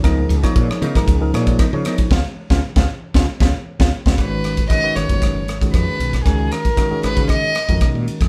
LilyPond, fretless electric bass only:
\new Staff \with { instrumentName = "Fretless electric bass" } { \clef bass \time 4/4 \key des \mixolydian \tempo 4 = 116 des,8 des,16 r16 bes,16 r16 des16 aes,,16 des,8 bes,8 r16 des16 r8 | des,16 r8 des,16 r16 des,16 r8 des,16 r16 des,16 r8 des,16 r16 des,16 | aes,,4. aes,,16 ges,,8. aes,,8 f,16 r16 ces,8 | des,8 r4 aes,,16 des8 r8 f,16 ces,16 bes,16 r16 f,16 | }